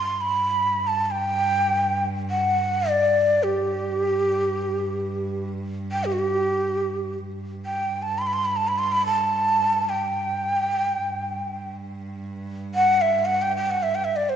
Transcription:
Already playing: G2 C6
0.21 B5
0.87 A5
1.06 A5
1.11 G5
2.30 F#5
2.90 D5
3.43 G4
3.52 G2
5.92 G5
6.05 G4
6.12 F#4
6.19 G4
7.28 G2
7.66 G5
8.02 A5
8.18 B5 C6
8.27 B5
8.33 C6
8.45 B5
8.56 A5
8.68 B5
8.79 C6
8.92 B5
9.06 A5
9.89 G5
11.05 G2
12.75 F#5
13.02 E5
13.25 F#5
13.42 G5
13.56 G5
13.70 F#5
13.83 E5
13.95 G5
14.04 E5
14.16 D5
14.29 C5

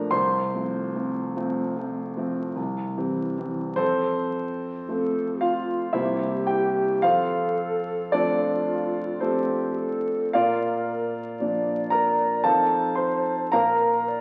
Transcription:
Already playing: A#1 F3 A3 D4 A#4 A#5
0.11 C2 C5 C6
0.55 F3 A3 C4
0.95 F3 A3 C4
1.36 F3 A3 C4
1.77 F3 A3 C4
2.17 F3 A3 C4
2.56 C2
2.97 E3 G3 C4
3.38 E3 G3 C4
3.76 F2 C4 A4 C5
4.88 F3 A3 C4 A4
5.41 F4 F5
5.93 C2 G3 A#3 C4 E4 G4 C5 E5
6.47 G4 G5
7.02 F2 F4 A4 C5 F5
8.12 F3 A3 C4 D4 F4 A4 D5
9.20 F3 A3 C4 G4 A4 C5
9.78 A4
10.33 A#2 F4 A#4 D5 F5
11.39 F3 A#3 D4 D5
11.90 A#4 A#5
12.44 F2 F3 C4 D#4 A4 C5 F5 A5
12.95 C5 C6
13.52 A#2 A#4 F5 A#5
14.08 D5

